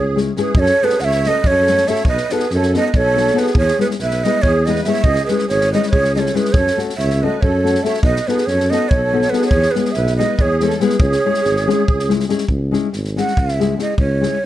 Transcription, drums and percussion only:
0.18 snare
0.37 snare
0.55 kick
0.66 snare
0.90 snare
1.00 snare
1.12 snare
1.24 snare
1.44 kick
1.67 snare
1.77 snare
1.87 snare
1.96 snare
2.05 kick
2.17 snare
2.30 snare
2.40 snare
2.50 snare
2.62 snare
2.74 snare
2.94 kick
3.17 snare
3.27 snare
3.38 snare
3.47 snare
3.55 kick
3.68 snare
3.80 snare
3.91 snare
3.99 snare
4.11 snare
4.24 snare
4.43 kick
4.66 snare
4.76 snare
4.84 snare
4.94 snare
5.04 kick
5.16 snare
5.28 snare
5.39 snare
5.49 snare
5.61 snare
5.73 snare
5.83 snare
5.93 kick
6.04 snare
6.16 snare
6.26 snare
6.35 snare
6.45 snare
6.54 kick
6.67 snare
6.79 snare
6.90 snare
6.99 snare
7.10 snare
7.42 kick
7.66 snare
7.75 snare
7.85 snare
7.94 snare
8.03 kick
8.16 snare
8.28 snare
8.38 snare
8.48 snare
8.60 snare
8.72 snare
8.91 kick
9.22 snare
9.33 snare
9.42 snare
9.51 kick
9.63 snare
9.75 snare
9.85 snare
9.94 snare
10.07 snare
10.20 snare
10.39 kick
10.60 snare
10.70 snare
10.80 snare
10.90 snare
11.00 kick
11.12 snare
11.34 snare
11.45 snare
11.57 snare
11.70 snare
11.88 kick
11.99 snare
12.10 snare
12.20 snare
12.29 snare
12.38 snare
12.48 kick
12.73 snare
12.93 snare
13.05 snare
13.18 snare
13.28 snare
13.37 kick
13.48 snare
13.60 snare
13.79 snare
13.98 kick
14.23 snare

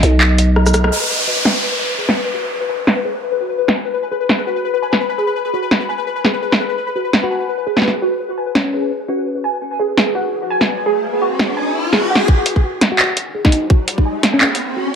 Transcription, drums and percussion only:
0.03 closed hi-hat
0.21 clap
0.38 closed hi-hat
0.56 cross-stick
0.66 cross-stick, shaker
0.74 cross-stick, closed hi-hat, shaker
0.84 cross-stick
1.45 snare
2.09 snare
2.87 snare
3.68 snare
4.29 snare
4.93 snare
5.71 snare
6.25 snare
6.52 snare
7.13 snare
7.77 snare
7.82 snare
7.88 snare
8.55 snare
9.97 snare
10.61 snare
11.39 snare
11.93 snare
12.15 snare
12.28 kick
12.46 closed hi-hat
12.56 kick
12.81 snare, closed hi-hat
12.99 clap
13.17 closed hi-hat
13.45 kick, snare
13.52 closed hi-hat
13.70 kick
13.88 closed hi-hat
13.98 kick
14.23 snare, closed hi-hat
14.41 clap
14.55 closed hi-hat

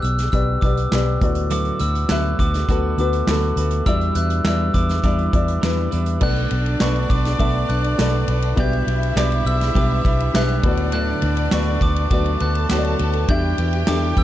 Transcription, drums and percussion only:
0.04 closed hi-hat
0.19 snare, closed hi-hat
0.33 kick, closed hi-hat
0.62 kick, closed hi-hat
0.77 closed hi-hat
0.92 snare, clap
1.21 kick, closed hi-hat
1.35 closed hi-hat
1.50 closed hi-hat
1.65 closed hi-hat
1.79 closed hi-hat
1.95 closed hi-hat
2.09 snare, clap
2.39 kick, closed hi-hat
2.54 snare, closed hi-hat
2.69 kick, closed hi-hat
2.98 closed hi-hat
3.13 closed hi-hat
3.27 snare, clap
3.42 closed hi-hat
3.57 closed hi-hat
3.71 closed hi-hat
3.86 kick, closed hi-hat
4.01 closed hi-hat
4.15 closed hi-hat
4.30 closed hi-hat
4.44 snare, clap
4.74 kick, closed hi-hat
4.89 snare, closed hi-hat
5.04 kick, closed hi-hat
5.18 closed hi-hat
5.33 kick, closed hi-hat
5.48 closed hi-hat
5.63 snare, clap
5.92 closed hi-hat
6.06 closed hi-hat
6.21 kick, crash
6.36 ride
6.51 ride
6.66 ride
6.80 snare, clap, ride
6.96 ride
7.10 kick, ride
7.25 snare, ride
7.40 kick, ride
7.69 ride
7.84 ride
7.99 snare, clap, ride
8.28 ride
8.42 ride
8.57 kick, ride
8.73 ride
8.88 ride
9.03 ride
9.17 snare, clap, ride
9.32 ride
9.47 ride
9.61 snare, ride
9.75 kick, ride
10.05 kick, ride
10.20 ride
10.35 snare, clap, ride
10.49 ride
10.63 kick, ride
10.77 ride
10.92 ride
11.22 ride
11.37 ride
11.51 snare, clap, ride
11.81 kick, ride
11.96 ride
12.11 kick, ride
12.26 ride
12.40 ride
12.55 ride
12.69 snare, clap, ride
12.84 ride
12.99 ride
13.13 ride
13.28 kick, ride
13.58 ride
13.73 ride
13.87 snare, clap, ride
14.17 kick, ride

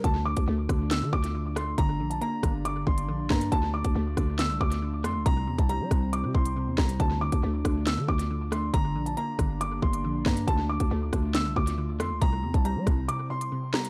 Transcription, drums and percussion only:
0.04 kick, closed hi-hat
0.37 kick, closed hi-hat
0.69 kick, cross-stick, closed hi-hat
0.91 snare, closed hi-hat
1.13 kick
1.24 closed hi-hat
1.56 cross-stick, closed hi-hat
1.78 kick, closed hi-hat
2.11 closed hi-hat
2.22 closed hi-hat
2.43 kick, cross-stick, closed hi-hat
2.65 closed hi-hat
2.87 kick
2.98 closed hi-hat
3.30 kick, cross-stick, snare
3.41 closed hi-hat
3.52 kick, closed hi-hat
3.84 kick, closed hi-hat
4.17 kick, cross-stick, closed hi-hat
4.39 snare, closed hi-hat
4.61 kick
4.72 closed hi-hat
5.04 cross-stick, closed hi-hat
5.26 kick, closed hi-hat
5.58 kick, closed hi-hat
5.69 closed hi-hat
5.91 kick, cross-stick, closed hi-hat
6.13 closed hi-hat
6.35 kick
6.45 closed hi-hat
6.78 kick, cross-stick, snare
6.89 closed hi-hat
7.00 kick, closed hi-hat
7.32 kick, closed hi-hat
7.65 kick, cross-stick, closed hi-hat
7.87 snare, closed hi-hat
8.08 kick
8.19 closed hi-hat
8.52 cross-stick, closed hi-hat
8.74 kick, closed hi-hat
9.06 closed hi-hat
9.17 closed hi-hat
9.39 kick, cross-stick, closed hi-hat
9.61 closed hi-hat
9.82 kick
9.93 closed hi-hat
10.26 kick, cross-stick, snare
10.37 closed hi-hat
10.48 kick, closed hi-hat
10.80 kick, closed hi-hat
11.13 kick, cross-stick, closed hi-hat
11.35 snare, closed hi-hat
11.56 kick
11.67 closed hi-hat
12.00 cross-stick, closed hi-hat
12.22 kick, closed hi-hat
12.54 kick, closed hi-hat
12.65 closed hi-hat
12.87 kick, cross-stick, closed hi-hat
13.09 closed hi-hat
13.41 closed hi-hat
13.74 cross-stick, snare
13.85 closed hi-hat

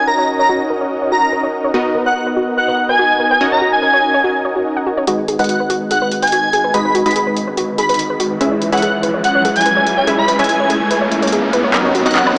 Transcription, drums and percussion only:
5.07 closed hi-hat
5.28 closed hi-hat
5.39 closed hi-hat
5.44 closed hi-hat
5.49 closed hi-hat
5.70 closed hi-hat
5.91 closed hi-hat
6.12 closed hi-hat
6.23 closed hi-hat
6.27 closed hi-hat
6.32 closed hi-hat
6.53 closed hi-hat
6.74 closed hi-hat
6.95 closed hi-hat
7.06 closed hi-hat
7.11 closed hi-hat
7.16 closed hi-hat
7.37 closed hi-hat
7.57 closed hi-hat
7.78 closed hi-hat
7.89 closed hi-hat
7.94 closed hi-hat
7.99 closed hi-hat
8.20 closed hi-hat
8.41 closed hi-hat
8.62 closed hi-hat
8.72 closed hi-hat
8.77 closed hi-hat
8.82 closed hi-hat
9.03 closed hi-hat
9.24 closed hi-hat
9.45 closed hi-hat
9.56 closed hi-hat
9.61 closed hi-hat
9.66 closed hi-hat
9.87 closed hi-hat
10.07 closed hi-hat
10.28 closed hi-hat
10.39 closed hi-hat
10.44 closed hi-hat
10.49 closed hi-hat
10.70 closed hi-hat
10.91 closed hi-hat
11.12 closed hi-hat
11.22 closed hi-hat
11.27 closed hi-hat
11.32 closed hi-hat
11.53 closed hi-hat
11.74 clap, closed hi-hat
11.95 closed hi-hat
12.06 closed hi-hat
12.11 closed hi-hat
12.16 clap, closed hi-hat
12.27 high woodblock

